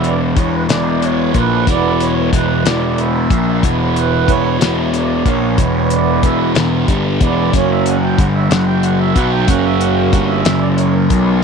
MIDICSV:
0, 0, Header, 1, 5, 480
1, 0, Start_track
1, 0, Tempo, 650759
1, 1238, Time_signature, 6, 3, 24, 8
1, 8437, End_track
2, 0, Start_track
2, 0, Title_t, "Harmonium"
2, 0, Program_c, 0, 20
2, 0, Note_on_c, 0, 52, 59
2, 0, Note_on_c, 0, 59, 45
2, 0, Note_on_c, 0, 64, 62
2, 51, Note_on_c, 0, 74, 82
2, 114, Note_off_c, 0, 59, 0
2, 115, Note_off_c, 0, 52, 0
2, 118, Note_off_c, 0, 64, 0
2, 156, Note_off_c, 0, 74, 0
2, 286, Note_on_c, 0, 73, 84
2, 404, Note_off_c, 0, 73, 0
2, 414, Note_on_c, 0, 71, 78
2, 464, Note_off_c, 0, 71, 0
2, 521, Note_on_c, 0, 74, 90
2, 758, Note_on_c, 0, 73, 83
2, 766, Note_off_c, 0, 74, 0
2, 1005, Note_off_c, 0, 73, 0
2, 1011, Note_on_c, 0, 64, 55
2, 1011, Note_on_c, 0, 71, 80
2, 1221, Note_off_c, 0, 64, 0
2, 1228, Note_off_c, 0, 71, 0
2, 1255, Note_on_c, 0, 52, 55
2, 1256, Note_on_c, 0, 74, 96
2, 1257, Note_on_c, 0, 59, 49
2, 1262, Note_on_c, 0, 64, 63
2, 1488, Note_on_c, 0, 73, 79
2, 1494, Note_off_c, 0, 74, 0
2, 1567, Note_off_c, 0, 52, 0
2, 1567, Note_off_c, 0, 59, 0
2, 1570, Note_off_c, 0, 64, 0
2, 1707, Note_off_c, 0, 73, 0
2, 1728, Note_on_c, 0, 71, 85
2, 1970, Note_on_c, 0, 74, 81
2, 1971, Note_off_c, 0, 71, 0
2, 2196, Note_on_c, 0, 52, 51
2, 2197, Note_on_c, 0, 76, 76
2, 2202, Note_on_c, 0, 59, 41
2, 2202, Note_on_c, 0, 64, 57
2, 2212, Note_off_c, 0, 74, 0
2, 2414, Note_off_c, 0, 52, 0
2, 2417, Note_off_c, 0, 59, 0
2, 2417, Note_off_c, 0, 64, 0
2, 2649, Note_off_c, 0, 76, 0
2, 2690, Note_on_c, 0, 52, 60
2, 2691, Note_on_c, 0, 59, 60
2, 2694, Note_on_c, 0, 64, 67
2, 2937, Note_on_c, 0, 71, 72
2, 3168, Note_on_c, 0, 73, 99
2, 3175, Note_off_c, 0, 71, 0
2, 3375, Note_off_c, 0, 52, 0
2, 3376, Note_off_c, 0, 59, 0
2, 3378, Note_off_c, 0, 64, 0
2, 3395, Note_on_c, 0, 59, 44
2, 3399, Note_on_c, 0, 52, 46
2, 3401, Note_on_c, 0, 64, 56
2, 3613, Note_off_c, 0, 59, 0
2, 3615, Note_off_c, 0, 52, 0
2, 3617, Note_off_c, 0, 64, 0
2, 3655, Note_on_c, 0, 74, 83
2, 3658, Note_off_c, 0, 73, 0
2, 3895, Note_off_c, 0, 74, 0
2, 3896, Note_on_c, 0, 73, 92
2, 4112, Note_on_c, 0, 52, 64
2, 4116, Note_on_c, 0, 59, 56
2, 4119, Note_on_c, 0, 64, 63
2, 4375, Note_on_c, 0, 74, 84
2, 4382, Note_off_c, 0, 73, 0
2, 4591, Note_off_c, 0, 74, 0
2, 4600, Note_on_c, 0, 76, 87
2, 4708, Note_off_c, 0, 76, 0
2, 4806, Note_off_c, 0, 52, 0
2, 4808, Note_off_c, 0, 59, 0
2, 4809, Note_off_c, 0, 64, 0
2, 5321, Note_on_c, 0, 52, 44
2, 5323, Note_on_c, 0, 59, 44
2, 5330, Note_on_c, 0, 64, 51
2, 5337, Note_on_c, 0, 74, 82
2, 5536, Note_off_c, 0, 52, 0
2, 5537, Note_off_c, 0, 59, 0
2, 5541, Note_off_c, 0, 64, 0
2, 5551, Note_off_c, 0, 74, 0
2, 5551, Note_on_c, 0, 54, 50
2, 5559, Note_on_c, 0, 58, 52
2, 5562, Note_on_c, 0, 61, 61
2, 5576, Note_on_c, 0, 73, 93
2, 5680, Note_off_c, 0, 73, 0
2, 5688, Note_on_c, 0, 76, 90
2, 5795, Note_off_c, 0, 76, 0
2, 5806, Note_on_c, 0, 78, 87
2, 5873, Note_off_c, 0, 54, 0
2, 5877, Note_off_c, 0, 58, 0
2, 5879, Note_off_c, 0, 61, 0
2, 5922, Note_on_c, 0, 79, 91
2, 5925, Note_off_c, 0, 78, 0
2, 6043, Note_off_c, 0, 79, 0
2, 6043, Note_on_c, 0, 78, 94
2, 6096, Note_off_c, 0, 78, 0
2, 6163, Note_on_c, 0, 76, 94
2, 6272, Note_on_c, 0, 78, 86
2, 6284, Note_off_c, 0, 76, 0
2, 6386, Note_off_c, 0, 78, 0
2, 6392, Note_on_c, 0, 79, 102
2, 6516, Note_on_c, 0, 78, 91
2, 6518, Note_off_c, 0, 79, 0
2, 6628, Note_off_c, 0, 78, 0
2, 6635, Note_on_c, 0, 76, 84
2, 6753, Note_on_c, 0, 78, 95
2, 6759, Note_off_c, 0, 76, 0
2, 6866, Note_off_c, 0, 78, 0
2, 6876, Note_on_c, 0, 79, 81
2, 6986, Note_on_c, 0, 66, 54
2, 6987, Note_on_c, 0, 58, 49
2, 6990, Note_on_c, 0, 61, 65
2, 6993, Note_on_c, 0, 78, 101
2, 6999, Note_off_c, 0, 79, 0
2, 7111, Note_on_c, 0, 76, 86
2, 7118, Note_off_c, 0, 78, 0
2, 7230, Note_on_c, 0, 78, 85
2, 7237, Note_off_c, 0, 76, 0
2, 7330, Note_on_c, 0, 79, 82
2, 7344, Note_off_c, 0, 78, 0
2, 7389, Note_off_c, 0, 79, 0
2, 7460, Note_on_c, 0, 78, 102
2, 7517, Note_off_c, 0, 78, 0
2, 7578, Note_on_c, 0, 76, 96
2, 7680, Note_off_c, 0, 58, 0
2, 7680, Note_off_c, 0, 66, 0
2, 7681, Note_off_c, 0, 61, 0
2, 7821, Note_on_c, 0, 74, 95
2, 7833, Note_off_c, 0, 76, 0
2, 7878, Note_off_c, 0, 74, 0
2, 7941, Note_on_c, 0, 73, 80
2, 8059, Note_on_c, 0, 70, 73
2, 8071, Note_off_c, 0, 73, 0
2, 8189, Note_on_c, 0, 54, 49
2, 8193, Note_on_c, 0, 61, 52
2, 8406, Note_off_c, 0, 54, 0
2, 8408, Note_off_c, 0, 61, 0
2, 8437, Note_off_c, 0, 70, 0
2, 8437, End_track
3, 0, Start_track
3, 0, Title_t, "Distorted electric guitar"
3, 0, Program_c, 1, 30
3, 0, Note_on_c, 1, 40, 81
3, 0, Note_on_c, 1, 47, 95
3, 0, Note_on_c, 1, 52, 91
3, 257, Note_off_c, 1, 40, 0
3, 262, Note_off_c, 1, 47, 0
3, 266, Note_off_c, 1, 52, 0
3, 266, Note_on_c, 1, 40, 68
3, 271, Note_on_c, 1, 47, 85
3, 277, Note_on_c, 1, 52, 90
3, 495, Note_off_c, 1, 40, 0
3, 499, Note_off_c, 1, 47, 0
3, 501, Note_off_c, 1, 52, 0
3, 504, Note_on_c, 1, 40, 86
3, 508, Note_on_c, 1, 47, 99
3, 510, Note_on_c, 1, 52, 98
3, 984, Note_off_c, 1, 40, 0
3, 986, Note_off_c, 1, 47, 0
3, 987, Note_off_c, 1, 52, 0
3, 992, Note_on_c, 1, 46, 69
3, 995, Note_on_c, 1, 53, 95
3, 998, Note_on_c, 1, 58, 88
3, 1228, Note_off_c, 1, 46, 0
3, 1229, Note_off_c, 1, 53, 0
3, 1231, Note_off_c, 1, 58, 0
3, 1233, Note_on_c, 1, 40, 82
3, 1236, Note_on_c, 1, 47, 82
3, 1239, Note_on_c, 1, 52, 91
3, 1705, Note_off_c, 1, 40, 0
3, 1706, Note_off_c, 1, 47, 0
3, 1712, Note_off_c, 1, 52, 0
3, 1714, Note_on_c, 1, 40, 79
3, 1715, Note_on_c, 1, 47, 98
3, 1719, Note_on_c, 1, 52, 103
3, 1947, Note_off_c, 1, 40, 0
3, 1948, Note_off_c, 1, 47, 0
3, 1949, Note_off_c, 1, 52, 0
3, 1956, Note_on_c, 1, 40, 85
3, 1957, Note_on_c, 1, 47, 99
3, 1958, Note_on_c, 1, 52, 91
3, 2431, Note_off_c, 1, 40, 0
3, 2431, Note_off_c, 1, 47, 0
3, 2432, Note_off_c, 1, 52, 0
3, 2441, Note_on_c, 1, 46, 80
3, 2445, Note_on_c, 1, 53, 81
3, 2447, Note_on_c, 1, 58, 90
3, 2673, Note_off_c, 1, 46, 0
3, 2675, Note_off_c, 1, 53, 0
3, 2676, Note_off_c, 1, 58, 0
3, 2678, Note_on_c, 1, 40, 86
3, 2682, Note_on_c, 1, 47, 87
3, 2684, Note_on_c, 1, 52, 94
3, 3146, Note_off_c, 1, 40, 0
3, 3148, Note_off_c, 1, 47, 0
3, 3151, Note_off_c, 1, 52, 0
3, 3155, Note_on_c, 1, 40, 79
3, 3157, Note_on_c, 1, 47, 91
3, 3160, Note_on_c, 1, 52, 100
3, 3383, Note_off_c, 1, 40, 0
3, 3388, Note_off_c, 1, 47, 0
3, 3390, Note_off_c, 1, 52, 0
3, 3392, Note_on_c, 1, 40, 88
3, 3397, Note_on_c, 1, 47, 105
3, 3399, Note_on_c, 1, 52, 107
3, 3869, Note_off_c, 1, 40, 0
3, 3871, Note_off_c, 1, 47, 0
3, 3872, Note_off_c, 1, 52, 0
3, 3875, Note_on_c, 1, 46, 78
3, 3878, Note_on_c, 1, 53, 79
3, 3882, Note_on_c, 1, 58, 85
3, 4110, Note_off_c, 1, 46, 0
3, 4112, Note_off_c, 1, 53, 0
3, 4114, Note_off_c, 1, 58, 0
3, 4114, Note_on_c, 1, 40, 86
3, 4118, Note_on_c, 1, 47, 86
3, 4119, Note_on_c, 1, 52, 107
3, 4585, Note_off_c, 1, 40, 0
3, 4588, Note_off_c, 1, 47, 0
3, 4592, Note_off_c, 1, 52, 0
3, 4594, Note_on_c, 1, 40, 82
3, 4597, Note_on_c, 1, 47, 101
3, 4600, Note_on_c, 1, 52, 93
3, 4825, Note_off_c, 1, 40, 0
3, 4831, Note_off_c, 1, 47, 0
3, 4832, Note_off_c, 1, 52, 0
3, 4834, Note_on_c, 1, 40, 88
3, 4839, Note_on_c, 1, 47, 97
3, 4841, Note_on_c, 1, 52, 96
3, 5069, Note_off_c, 1, 40, 0
3, 5072, Note_off_c, 1, 47, 0
3, 5073, Note_off_c, 1, 52, 0
3, 5073, Note_on_c, 1, 43, 77
3, 5075, Note_on_c, 1, 50, 85
3, 5079, Note_on_c, 1, 55, 78
3, 5309, Note_off_c, 1, 43, 0
3, 5310, Note_off_c, 1, 50, 0
3, 5312, Note_off_c, 1, 55, 0
3, 5314, Note_on_c, 1, 40, 83
3, 5320, Note_on_c, 1, 47, 85
3, 5324, Note_on_c, 1, 52, 82
3, 5549, Note_off_c, 1, 40, 0
3, 5552, Note_off_c, 1, 47, 0
3, 5554, Note_off_c, 1, 52, 0
3, 5557, Note_on_c, 1, 42, 77
3, 5560, Note_on_c, 1, 49, 91
3, 5562, Note_on_c, 1, 54, 105
3, 6030, Note_off_c, 1, 42, 0
3, 6031, Note_off_c, 1, 49, 0
3, 6032, Note_off_c, 1, 54, 0
3, 6035, Note_on_c, 1, 43, 86
3, 6038, Note_on_c, 1, 50, 84
3, 6041, Note_on_c, 1, 55, 95
3, 6264, Note_off_c, 1, 43, 0
3, 6267, Note_off_c, 1, 50, 0
3, 6267, Note_on_c, 1, 42, 83
3, 6270, Note_on_c, 1, 49, 96
3, 6272, Note_off_c, 1, 55, 0
3, 6275, Note_on_c, 1, 54, 104
3, 6744, Note_off_c, 1, 42, 0
3, 6745, Note_off_c, 1, 54, 0
3, 6746, Note_off_c, 1, 49, 0
3, 6751, Note_on_c, 1, 47, 82
3, 6754, Note_on_c, 1, 54, 94
3, 6759, Note_on_c, 1, 59, 106
3, 6986, Note_off_c, 1, 47, 0
3, 6986, Note_off_c, 1, 54, 0
3, 6990, Note_off_c, 1, 59, 0
3, 6990, Note_on_c, 1, 42, 91
3, 6991, Note_on_c, 1, 49, 106
3, 6994, Note_on_c, 1, 54, 113
3, 7464, Note_off_c, 1, 42, 0
3, 7465, Note_off_c, 1, 49, 0
3, 7467, Note_off_c, 1, 54, 0
3, 7471, Note_on_c, 1, 43, 79
3, 7475, Note_on_c, 1, 50, 89
3, 7476, Note_on_c, 1, 55, 98
3, 7705, Note_off_c, 1, 43, 0
3, 7707, Note_off_c, 1, 50, 0
3, 7708, Note_off_c, 1, 55, 0
3, 7712, Note_on_c, 1, 42, 104
3, 7714, Note_on_c, 1, 49, 95
3, 7716, Note_on_c, 1, 54, 105
3, 8185, Note_off_c, 1, 42, 0
3, 8185, Note_off_c, 1, 49, 0
3, 8187, Note_off_c, 1, 54, 0
3, 8191, Note_on_c, 1, 47, 80
3, 8196, Note_on_c, 1, 54, 95
3, 8197, Note_on_c, 1, 59, 89
3, 8420, Note_off_c, 1, 47, 0
3, 8425, Note_off_c, 1, 59, 0
3, 8426, Note_off_c, 1, 54, 0
3, 8437, End_track
4, 0, Start_track
4, 0, Title_t, "Picked electric bass"
4, 0, Program_c, 2, 34
4, 0, Note_on_c, 2, 28, 77
4, 243, Note_off_c, 2, 28, 0
4, 267, Note_on_c, 2, 28, 89
4, 495, Note_off_c, 2, 28, 0
4, 506, Note_on_c, 2, 28, 84
4, 963, Note_off_c, 2, 28, 0
4, 995, Note_on_c, 2, 34, 99
4, 1220, Note_off_c, 2, 34, 0
4, 1233, Note_on_c, 2, 28, 77
4, 1687, Note_off_c, 2, 28, 0
4, 1715, Note_on_c, 2, 28, 98
4, 1940, Note_off_c, 2, 28, 0
4, 1960, Note_on_c, 2, 28, 90
4, 2410, Note_off_c, 2, 28, 0
4, 2436, Note_on_c, 2, 34, 95
4, 2661, Note_off_c, 2, 34, 0
4, 2680, Note_on_c, 2, 28, 93
4, 3131, Note_off_c, 2, 28, 0
4, 3159, Note_on_c, 2, 28, 91
4, 3382, Note_off_c, 2, 28, 0
4, 3398, Note_on_c, 2, 28, 84
4, 3850, Note_off_c, 2, 28, 0
4, 3876, Note_on_c, 2, 34, 99
4, 4101, Note_off_c, 2, 34, 0
4, 4116, Note_on_c, 2, 28, 89
4, 4568, Note_off_c, 2, 28, 0
4, 4593, Note_on_c, 2, 28, 91
4, 4819, Note_off_c, 2, 28, 0
4, 4838, Note_on_c, 2, 28, 87
4, 5061, Note_off_c, 2, 28, 0
4, 5073, Note_on_c, 2, 31, 83
4, 5299, Note_off_c, 2, 31, 0
4, 5316, Note_on_c, 2, 28, 90
4, 5540, Note_off_c, 2, 28, 0
4, 5558, Note_on_c, 2, 30, 86
4, 6008, Note_off_c, 2, 30, 0
4, 6036, Note_on_c, 2, 31, 81
4, 6260, Note_off_c, 2, 31, 0
4, 6271, Note_on_c, 2, 30, 93
4, 6724, Note_off_c, 2, 30, 0
4, 6756, Note_on_c, 2, 35, 86
4, 6979, Note_off_c, 2, 35, 0
4, 6993, Note_on_c, 2, 30, 89
4, 7444, Note_off_c, 2, 30, 0
4, 7472, Note_on_c, 2, 31, 87
4, 7696, Note_off_c, 2, 31, 0
4, 7712, Note_on_c, 2, 30, 82
4, 8162, Note_off_c, 2, 30, 0
4, 8191, Note_on_c, 2, 35, 91
4, 8414, Note_off_c, 2, 35, 0
4, 8437, End_track
5, 0, Start_track
5, 0, Title_t, "Drums"
5, 29, Note_on_c, 9, 42, 58
5, 103, Note_off_c, 9, 42, 0
5, 269, Note_on_c, 9, 42, 72
5, 270, Note_on_c, 9, 36, 106
5, 343, Note_off_c, 9, 42, 0
5, 344, Note_off_c, 9, 36, 0
5, 511, Note_on_c, 9, 42, 91
5, 519, Note_on_c, 9, 38, 112
5, 585, Note_off_c, 9, 42, 0
5, 593, Note_off_c, 9, 38, 0
5, 755, Note_on_c, 9, 42, 72
5, 829, Note_off_c, 9, 42, 0
5, 991, Note_on_c, 9, 42, 67
5, 993, Note_on_c, 9, 36, 89
5, 1065, Note_off_c, 9, 42, 0
5, 1066, Note_off_c, 9, 36, 0
5, 1233, Note_on_c, 9, 36, 101
5, 1233, Note_on_c, 9, 42, 87
5, 1307, Note_off_c, 9, 36, 0
5, 1307, Note_off_c, 9, 42, 0
5, 1478, Note_on_c, 9, 42, 77
5, 1552, Note_off_c, 9, 42, 0
5, 1717, Note_on_c, 9, 36, 98
5, 1719, Note_on_c, 9, 42, 79
5, 1791, Note_off_c, 9, 36, 0
5, 1793, Note_off_c, 9, 42, 0
5, 1959, Note_on_c, 9, 42, 103
5, 1967, Note_on_c, 9, 38, 110
5, 2032, Note_off_c, 9, 42, 0
5, 2040, Note_off_c, 9, 38, 0
5, 2200, Note_on_c, 9, 42, 70
5, 2274, Note_off_c, 9, 42, 0
5, 2437, Note_on_c, 9, 36, 108
5, 2439, Note_on_c, 9, 42, 71
5, 2511, Note_off_c, 9, 36, 0
5, 2513, Note_off_c, 9, 42, 0
5, 2679, Note_on_c, 9, 36, 92
5, 2681, Note_on_c, 9, 42, 90
5, 2752, Note_off_c, 9, 36, 0
5, 2755, Note_off_c, 9, 42, 0
5, 2924, Note_on_c, 9, 42, 69
5, 2998, Note_off_c, 9, 42, 0
5, 3158, Note_on_c, 9, 36, 104
5, 3159, Note_on_c, 9, 42, 67
5, 3232, Note_off_c, 9, 36, 0
5, 3233, Note_off_c, 9, 42, 0
5, 3401, Note_on_c, 9, 42, 94
5, 3409, Note_on_c, 9, 38, 124
5, 3475, Note_off_c, 9, 42, 0
5, 3483, Note_off_c, 9, 38, 0
5, 3641, Note_on_c, 9, 42, 65
5, 3715, Note_off_c, 9, 42, 0
5, 3877, Note_on_c, 9, 36, 91
5, 3877, Note_on_c, 9, 42, 56
5, 3951, Note_off_c, 9, 36, 0
5, 3951, Note_off_c, 9, 42, 0
5, 4116, Note_on_c, 9, 42, 85
5, 4117, Note_on_c, 9, 36, 93
5, 4190, Note_off_c, 9, 36, 0
5, 4190, Note_off_c, 9, 42, 0
5, 4354, Note_on_c, 9, 42, 67
5, 4428, Note_off_c, 9, 42, 0
5, 4596, Note_on_c, 9, 42, 67
5, 4597, Note_on_c, 9, 36, 97
5, 4669, Note_off_c, 9, 42, 0
5, 4670, Note_off_c, 9, 36, 0
5, 4833, Note_on_c, 9, 42, 86
5, 4841, Note_on_c, 9, 38, 112
5, 4907, Note_off_c, 9, 42, 0
5, 4915, Note_off_c, 9, 38, 0
5, 5076, Note_on_c, 9, 36, 98
5, 5076, Note_on_c, 9, 42, 73
5, 5150, Note_off_c, 9, 36, 0
5, 5150, Note_off_c, 9, 42, 0
5, 5315, Note_on_c, 9, 42, 69
5, 5317, Note_on_c, 9, 36, 99
5, 5389, Note_off_c, 9, 42, 0
5, 5391, Note_off_c, 9, 36, 0
5, 5557, Note_on_c, 9, 42, 95
5, 5558, Note_on_c, 9, 36, 98
5, 5631, Note_off_c, 9, 36, 0
5, 5631, Note_off_c, 9, 42, 0
5, 5796, Note_on_c, 9, 42, 68
5, 5870, Note_off_c, 9, 42, 0
5, 6037, Note_on_c, 9, 36, 113
5, 6038, Note_on_c, 9, 42, 72
5, 6111, Note_off_c, 9, 36, 0
5, 6112, Note_off_c, 9, 42, 0
5, 6276, Note_on_c, 9, 42, 100
5, 6284, Note_on_c, 9, 38, 110
5, 6350, Note_off_c, 9, 42, 0
5, 6358, Note_off_c, 9, 38, 0
5, 6514, Note_on_c, 9, 42, 74
5, 6588, Note_off_c, 9, 42, 0
5, 6754, Note_on_c, 9, 42, 64
5, 6755, Note_on_c, 9, 36, 102
5, 6828, Note_off_c, 9, 42, 0
5, 6829, Note_off_c, 9, 36, 0
5, 6992, Note_on_c, 9, 42, 96
5, 6994, Note_on_c, 9, 36, 104
5, 7065, Note_off_c, 9, 42, 0
5, 7068, Note_off_c, 9, 36, 0
5, 7233, Note_on_c, 9, 42, 62
5, 7307, Note_off_c, 9, 42, 0
5, 7471, Note_on_c, 9, 36, 104
5, 7471, Note_on_c, 9, 42, 74
5, 7544, Note_off_c, 9, 42, 0
5, 7545, Note_off_c, 9, 36, 0
5, 7708, Note_on_c, 9, 42, 95
5, 7717, Note_on_c, 9, 38, 126
5, 7782, Note_off_c, 9, 42, 0
5, 7790, Note_off_c, 9, 38, 0
5, 7950, Note_on_c, 9, 42, 70
5, 8024, Note_off_c, 9, 42, 0
5, 8189, Note_on_c, 9, 42, 68
5, 8190, Note_on_c, 9, 36, 98
5, 8262, Note_off_c, 9, 42, 0
5, 8264, Note_off_c, 9, 36, 0
5, 8437, End_track
0, 0, End_of_file